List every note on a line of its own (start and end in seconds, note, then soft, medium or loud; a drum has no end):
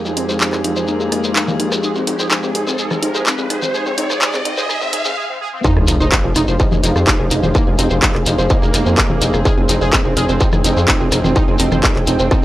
0.00 5.17 F2 medium
0.00 5.13 F3 medium
0.00 5.17 G#3 medium
0.00 5.13 C4 medium
0.00 5.17 D#4 medium
0.00 5.13 G4 medium
0.00 5.13 G#4 medium
0.00 5.17 C5 medium
0.00 5.17 F5 medium
0.00 riser medium
0.05 0.15 F1 medium
0.05 0.12 F3 medium
0.05 0.09 G#4 medium
0.05 shekere soft
0.17 0.27 F1 loud
0.17 0.24 C4 medium
0.17 0.23 D#4 medium
0.17 closed hi-hat loud
0.29 0.39 F1 medium
0.29 0.36 F3 medium
0.29 0.35 C5 loud
0.29 shekere medium
0.41 0.48 F3 medium
0.41 0.47 D#4 medium
0.41 clap loud
0.41 shekere medium
0.53 0.62 F1 medium
0.53 0.59 G#4 medium
0.53 cross-stick soft
0.53 clap soft
0.53 shekere soft
0.64 0.75 F1 loud
0.64 0.72 F3 medium
0.64 0.71 D#4 medium
0.64 closed hi-hat medium
0.76 0.86 F1 medium
0.76 0.84 F3 medium
0.76 0.85 C5 loud
0.76 shekere medium
0.88 1.74 A#3 loud
0.88 0.94 D#4 loud
0.88 shekere medium
1.00 1.10 F1 medium
1.00 1.04 G#4 medium
1.00 shekere soft
1.12 1.22 F1 medium
1.12 1.18 D#4 loud
1.12 cross-stick soft
1.12 closed hi-hat loud
1.24 1.34 G1 medium
1.24 1.30 C5 medium
1.24 shekere medium
1.36 1.42 D#4 medium
1.36 clap loud
1.36 shekere medium
1.48 1.58 F1 medium
1.48 1.54 G#4 medium
1.48 low conga medium
1.48 shekere soft
1.60 1.70 F1 loud
1.60 1.66 D#4 medium
1.60 closed hi-hat medium
1.72 1.82 F1 medium
1.72 1.78 C5 medium
1.72 cross-stick soft
1.72 shekere medium
1.83 1.93 D#4 medium
1.83 1.91 G#4 medium
1.83 shekere medium
1.95 2.05 F1 medium
1.95 2.03 C4 medium
1.95 1.99 G#4 medium
1.95 shekere soft
2.07 2.17 F1 loud
2.07 2.15 C4 medium
2.07 2.13 D#4 medium
2.07 closed hi-hat loud
2.19 2.29 F1 medium
2.19 2.26 G#4 medium
2.19 2.25 C5 medium
2.19 shekere medium
2.31 2.38 C4 medium
2.31 2.37 D#4 medium
2.31 cross-stick soft
2.31 clap loud
2.31 shekere medium
2.43 2.53 F1 medium
2.43 2.50 C4 medium
2.43 2.49 G#4 medium
2.43 shekere soft
2.55 2.65 F1 loud
2.55 2.61 D#4 medium
2.55 2.62 G#4 medium
2.55 closed hi-hat loud
2.67 2.77 F1 medium
2.67 2.74 C4 medium
2.67 2.76 C5 medium
2.67 shekere medium
2.78 2.88 D#4 medium
2.78 2.86 G#4 medium
2.78 shekere medium
2.91 3.01 F1 medium
2.91 2.98 C4 medium
2.91 2.94 G#4 medium
2.91 cross-stick medium
2.91 low conga medium
2.91 shekere soft
3.02 3.13 F1 loud
3.02 3.10 C4 medium
3.02 3.09 D#4 loud
3.02 closed hi-hat loud
3.15 3.24 G1 medium
3.15 3.22 G#4 medium
3.15 3.21 C5 loud
3.15 shekere medium
3.26 3.34 C4 medium
3.26 3.32 D#4 medium
3.26 clap loud
3.26 shekere medium
3.38 3.48 F1 medium
3.38 3.46 C4 medium
3.38 3.44 G#4 medium
3.38 shekere soft
3.50 3.60 F1 loud
3.50 3.56 D#4 medium
3.50 3.58 G#4 medium
3.50 cross-stick medium
3.50 closed hi-hat loud
3.62 3.72 F1 medium
3.62 3.69 C4 medium
3.62 3.71 C5 loud
3.62 low conga medium
3.62 shekere medium
3.74 3.83 D#4 medium
3.74 3.81 G#4 loud
3.74 shekere medium
3.86 3.96 F1 medium
3.86 3.93 C4 medium
3.86 3.90 G#4 medium
3.86 shekere soft
3.98 4.08 F1 loud
3.98 4.05 C4 medium
3.98 4.04 D#4 loud
3.98 closed hi-hat loud
4.10 4.20 F1 medium
4.10 4.17 G#4 medium
4.10 4.16 C5 loud
4.10 cross-stick medium
4.10 shekere medium
4.21 4.31 D#4 medium
4.21 4.29 G#4 loud
4.21 clap loud
4.21 shekere medium
4.33 4.43 F1 medium
4.33 4.41 C4 medium
4.33 4.37 G#4 medium
4.33 clap soft
4.33 shekere soft
4.45 4.55 F1 loud
4.45 4.53 C4 medium
4.45 4.51 D#4 loud
4.45 closed hi-hat medium
4.57 4.67 F1 medium
4.57 4.65 G#4 loud
4.57 4.63 C5 loud
4.57 shekere medium
4.69 4.78 D#4 medium
4.69 4.77 G#4 loud
4.69 cross-stick medium
4.69 shekere medium
4.81 4.91 F1 medium
4.81 4.88 C4 medium
4.81 4.85 G#4 medium
4.81 shekere soft
4.93 5.03 F1 loud
4.93 5.02 D#4 medium
4.93 5.00 G#4 loud
4.93 closed hi-hat loud
5.05 5.15 G1 medium
5.05 5.12 C4 medium
5.05 5.09 G#4 medium
5.05 shekere medium
5.17 5.24 G#4 loud
5.29 5.36 C4 medium
5.41 5.48 G#4 loud
5.53 5.60 C4 medium
5.64 12.45 F3 medium
5.64 12.45 C4 medium
5.64 5.74 D#4 medium
5.64 5.72 D#4 loud
5.64 9.42 G4 medium
5.64 12.45 G#4 medium
5.64 5.74 D#5 medium
5.64 kick loud
5.64 sub drop medium
5.64 shekere soft
5.77 5.86 F1 medium
5.77 5.84 F3 medium
5.77 5.80 G#4 medium
5.77 5.80 G#5 medium
5.77 cross-stick medium
5.87 5.98 F1 loud
5.87 5.96 F3 medium
5.87 5.94 D#4 loud
5.87 5.94 D#5 medium
5.87 closed hi-hat loud
5.87 shekere medium
6.00 6.10 F1 medium
6.00 6.07 D#4 medium
6.00 6.07 D#4 loud
6.00 6.06 C5 loud
6.00 6.06 C6 medium
6.00 shekere soft
6.12 6.19 F3 medium
6.12 6.18 D#4 medium
6.12 kick loud
6.12 clap loud
6.12 shekere soft
6.18 12.45 C5 loud
6.24 6.34 F1 medium
6.24 6.31 F3 medium
6.24 6.30 G#4 medium
6.24 10.28 F5 medium
6.24 6.30 G#5 medium
6.36 6.46 F1 loud
6.36 6.42 D#4 medium
6.36 6.43 D#4 loud
6.36 6.43 D#4 medium
6.36 6.42 D#5 medium
6.36 cross-stick medium
6.36 closed hi-hat medium
6.36 shekere medium
6.48 6.58 F1 medium
6.48 6.55 F3 medium
6.48 6.57 C5 loud
6.48 6.57 C6 medium
6.48 shekere soft
6.60 6.67 F3 medium
6.60 6.66 D#4 loud
6.60 6.66 D#5 medium
6.60 kick loud
6.60 shekere medium
6.72 6.82 F1 medium
6.72 6.75 G#4 medium
6.72 6.75 G#5 medium
6.72 low conga medium
6.72 shekere soft
6.83 6.94 F1 loud
6.83 6.91 F3 medium
6.83 6.90 D#4 loud
6.83 6.90 D#5 medium
6.83 closed hi-hat loud
6.83 shekere medium
6.96 7.05 F2 medium
6.96 7.01 C5 medium
6.96 7.01 C6 medium
6.96 cross-stick medium
6.96 shekere soft
7.07 7.15 F3 medium
7.07 7.13 D#4 medium
7.07 7.13 D#5 medium
7.07 kick loud
7.07 clap loud
7.07 shekere medium
7.19 7.29 F1 medium
7.19 7.26 F3 medium
7.19 7.25 G#4 medium
7.19 7.25 G#5 medium
7.31 7.41 F1 loud
7.31 7.37 D#4 medium
7.31 7.37 D#5 medium
7.31 closed hi-hat medium
7.31 shekere medium
7.43 7.53 F1 medium
7.43 7.50 F3 medium
7.43 7.49 C5 medium
7.43 7.49 C6 medium
7.43 low conga medium
7.43 shekere soft
7.55 7.62 A#3 medium
7.55 7.64 D#4 medium
7.55 7.64 D#5 medium
7.55 kick loud
7.55 cross-stick soft
7.55 shekere medium
7.67 7.77 F1 medium
7.67 7.74 F3 medium
7.67 7.71 G#4 medium
7.67 7.71 G#5 medium
7.79 7.89 F1 loud
7.79 7.86 C4 medium
7.79 7.86 C4 loud
7.79 7.85 D#4 loud
7.79 7.85 D#5 medium
7.79 closed hi-hat loud
7.79 shekere loud
7.90 8.01 F1 medium
7.90 7.98 F3 medium
7.90 7.97 C5 loud
7.90 7.97 C6 medium
7.90 shekere soft
8.02 8.10 F3 medium
8.02 8.09 D#4 medium
8.02 8.09 D#5 medium
8.02 kick loud
8.02 clap loud
8.02 shekere medium
8.15 8.24 F1 medium
8.15 8.21 G#4 medium
8.15 8.21 G#5 medium
8.15 cross-stick soft
8.15 clap soft
8.26 8.36 F1 loud
8.26 8.34 F3 medium
8.26 8.32 D#4 medium
8.26 8.32 D#5 medium
8.26 closed hi-hat medium
8.26 shekere loud
8.38 8.48 F1 medium
8.38 8.46 F3 medium
8.38 8.47 C5 loud
8.38 8.47 C6 medium
8.38 shekere soft
8.50 9.36 A#3 loud
8.50 8.56 D#4 loud
8.50 8.56 D#5 medium
8.50 kick loud
8.50 shekere soft
8.62 8.72 F1 medium
8.62 8.66 G#4 medium
8.62 8.66 G#5 medium
8.62 shekere soft
8.74 8.84 F1 loud
8.74 8.80 D#4 loud
8.74 8.80 D#5 medium
8.74 cross-stick soft
8.74 closed hi-hat loud
8.74 shekere loud
8.86 8.96 F2 medium
8.86 8.92 C5 medium
8.86 8.92 C6 medium
8.86 shekere soft
8.98 9.04 D#4 medium
8.98 9.04 D#5 medium
8.98 kick loud
8.98 clap loud
8.98 shekere medium
9.10 9.20 F1 medium
9.10 9.16 G#4 medium
9.10 9.16 G#5 medium
9.10 low conga medium
9.22 9.32 F1 loud
9.22 9.28 D#4 medium
9.22 9.28 D#5 medium
9.22 closed hi-hat loud
9.22 shekere medium
9.34 9.43 F1 medium
9.34 9.40 C5 medium
9.34 9.40 C6 medium
9.34 cross-stick medium
9.34 shekere soft
9.45 9.55 D#4 medium
9.45 12.45 F4 medium
9.45 9.53 G#4 loud
9.45 9.55 D#5 medium
9.45 kick loud
9.45 shekere medium
9.58 9.67 F1 medium
9.58 9.65 C4 medium
9.58 9.61 G#4 medium
9.58 9.61 G#5 medium
9.69 9.79 F1 loud
9.69 9.76 C4 medium
9.69 9.77 C4 medium
9.69 9.75 D#4 loud
9.69 9.75 D#5 medium
9.69 closed hi-hat loud
9.69 shekere loud
9.81 9.91 F1 medium
9.81 9.88 G#4 medium
9.81 9.88 G#4 loud
9.81 9.87 C5 loud
9.81 9.87 C6 medium
9.81 shekere soft
9.93 10.00 C4 medium
9.93 9.99 D#4 medium
9.93 kick loud
9.93 cross-stick medium
9.93 clap loud
9.93 shekere medium
10.05 10.15 F1 medium
10.05 10.12 C4 medium
10.05 10.11 G#4 medium
10.05 10.11 G#5 medium
10.14 10.27 F1 loud
10.14 10.23 D#4 medium
10.14 10.24 G#4 medium
10.14 10.24 G#4 loud
10.14 10.23 D#5 medium
10.14 12.45 G5 medium
10.14 closed hi-hat loud
10.14 shekere medium
10.29 10.39 F1 medium
10.29 10.36 C4 medium
10.29 10.38 C5 loud
10.29 10.38 C6 medium
10.29 shekere soft
10.40 10.48 C4 medium
10.40 10.47 D#4 loud
10.40 10.47 D#5 medium
10.40 kick loud
10.40 shekere medium
10.53 10.62 F1 medium
10.53 10.56 G#4 medium
10.53 10.56 G#5 medium
10.53 cross-stick medium
10.53 low conga medium
10.53 shekere soft
10.64 10.75 F1 loud
10.64 10.72 C4 medium
10.64 10.71 D#4 loud
10.64 10.71 D#5 medium
10.64 closed hi-hat loud
10.64 shekere medium
10.77 10.86 F2 medium
10.77 10.82 C5 medium
10.77 10.82 C6 medium
10.77 shekere soft
10.88 10.96 C4 medium
10.88 10.94 D#4 medium
10.88 10.94 D#5 medium
10.88 kick loud
10.88 clap loud
10.88 shekere medium
11.00 11.10 F1 medium
11.00 11.07 C4 medium
11.00 11.06 G#4 medium
11.00 11.06 G#5 medium
11.12 11.22 F1 loud
11.12 11.18 D#4 medium
11.12 11.18 D#5 medium
11.12 cross-stick medium
11.12 closed hi-hat loud
11.12 shekere loud
11.24 11.34 F1 medium
11.24 11.31 C4 medium
11.24 11.30 C5 medium
11.24 11.30 C6 medium
11.24 low conga medium
11.24 shekere soft
11.36 11.43 D#4 medium
11.36 11.45 D#4 medium
11.36 11.43 D#4 medium
11.36 11.45 D#5 medium
11.36 kick loud
11.36 shekere medium
11.48 11.58 F1 medium
11.48 11.55 C4 medium
11.48 11.52 G#4 medium
11.48 11.52 G#5 medium
11.59 11.70 F1 loud
11.59 11.67 C4 loud
11.59 11.67 C4 medium
11.59 11.66 D#4 loud
11.59 11.66 D#5 medium
11.59 closed hi-hat loud
11.59 shekere loud
11.72 11.82 F1 medium
11.72 11.79 C4 medium
11.72 11.78 C5 loud
11.72 11.78 C6 medium
11.72 cross-stick medium
11.72 low conga medium
11.72 shekere soft
11.83 11.91 C4 medium
11.83 11.90 D#4 medium
11.83 kick loud
11.83 clap loud
11.83 shekere medium
11.96 12.05 F1 medium
11.96 12.02 G#4 medium
11.96 12.02 G#5 medium
11.96 clap soft
12.07 12.17 F1 loud
12.07 12.15 C4 medium
12.07 12.13 D#4 medium
12.07 12.13 D#5 medium
12.07 closed hi-hat medium
12.07 shekere medium
12.19 12.29 F1 medium
12.19 12.26 C4 medium
12.19 12.28 C5 loud
12.19 12.28 C6 medium
12.19 shekere soft
12.31 12.45 C4 loud
12.31 12.37 D#4 loud
12.31 12.37 D#5 medium
12.31 kick loud
12.31 cross-stick medium
12.31 shekere medium